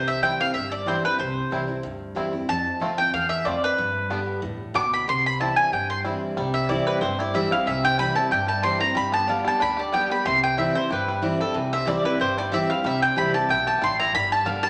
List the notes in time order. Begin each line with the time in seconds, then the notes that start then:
Already playing: C2 C3
0.08 E5
0.22 E3 G3 C4 E4 G5
0.40 C4 E4 F5
0.54 G1 G2 E5
0.72 D5
0.86 E3 G3 C4 E4 C5
1.04 C4 E4 B4
1.19 C2 C3 C5
1.51 C2 E3 G3 C4 E4
1.68 C4 E4
1.83 D2 G2
2.15 E2 E3 G3 C4 E4
2.33 C4 E4
2.49 F2 A5
2.80 D2 F3 A3 C4 F4
2.98 C4 F4 G5
3.13 E2 F5
3.29 E5
3.45 F2 A3 C4 F4 D5
3.64 B4
3.78 G2
4.10 D3 G3 B3 D4 G4
4.42 E2 A2
4.74 D2 B2 G3 B3 D4 D6
4.93 B5
5.07 C2 C3 C6
5.26 B5
5.40 E3 G3 C4 E4 A5
5.56 G#5
5.72 G1 G2 G5
5.90 C6
6.04 E3 G3 C4 E4
6.36 C2 C3 G3
6.54 E5
6.69 E3 G3 C4 E4 D5
6.87 G3 B4
7.01 G1 G2 C4 C5
7.19 E4 D5
7.34 E3 G3 C4 E4 E5
7.51 C4 E4 F5
7.66 C2 C3 E3 E5
7.83 C4 G5
7.98 E3 G3 C4 E4 B5
8.15 C4 E4 A5
8.31 G1 G2 G4 G5
8.47 G3 A5
8.63 E3 G3 C4 E4 G4 C6
8.80 G3 C4 E4 A#5
8.95 G1 G2 G3 B5
9.12 B3 A5
9.27 D3 G3 B3 D4 G4 F5
9.45 G3 B3 G4 A5
9.60 D2 D3 D4 B5
9.77 G4 D5
9.93 D3 G3 B3 G4 G5
10.10 G3 B3 G4 B5
10.25 C2 C3 E3 C6
10.43 C4 G5
10.57 E3 G3 C4 E4 E5
10.75 C4 E4 C5
10.90 G1 G2 G4 B4
11.08 G3
11.22 E3 G3 C4 E4 G4
11.39 G3 C4 E4 A4
11.54 C2 C3 E3
11.73 C4 E5
11.85 E3 G3 C4 E4 D5
12.03 C4 E4 B4
12.19 G1 G2 G4 C5
12.38 G3 D5
12.52 E3 G3 C4 E4 G4 E5
12.69 G3 C4 E4 F5
12.84 C2 C3 G3 E5
13.02 C4 G5
13.16 C2 E3 G3 C4 E4 B5
13.33 C4 E4 G4 A5
13.49 B1 B2 E4 G5
13.67 G4 A5
13.81 A1 A2 G3 C6
13.99 E4 A#5
14.13 G1 G2 G3 B5
14.32 A5
14.45 G1 D3 G3 B3 D4 G4 F5
14.63 G3 B3 G4 A5